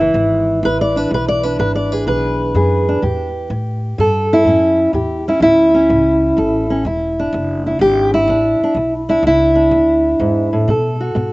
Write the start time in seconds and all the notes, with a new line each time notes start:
Already playing: F#1 E2 E4
0.01 E3
0.14 G#1 E2
0.63 A1 E2 B4
0.81 D5
0.96 D4 B4
1.11 B1 E2 B4
1.28 D5
1.43 D4 B4
1.59 G#1 E2 B4
1.75 D5
1.92 G#4 B4
2.07 B1 E2 B4
2.55 E2 F#2 G#4
2.89 D4
3.02 E2 A2 G4
3.50 A2
3.98 G2 A2 A4
4.33 E4
4.45 F#2 A2 C#4
4.93 E2 A2 G4
5.28 C#4 E4
5.40 D2 A2 E4
5.74 C#4
5.90 C#2 A2
6.37 A1 A2 A4
6.70 C#4
6.85 E1 E2 E4
7.19 D4
7.33 F#1 E2
7.67 E4
7.79 G#1 E2 G4
8.14 E4
8.28 A1 E2 D4
8.60 D4, muted upright bass stroke
8.75 B1 E2
9.09 D4 E4
9.23 C#2 E2
9.27 E4
9.55 D4
9.71 D2 E2
10.20 E2 G#2
10.53 A2
10.68 B2 A4
11.00 F#4
11.15 G#2 B2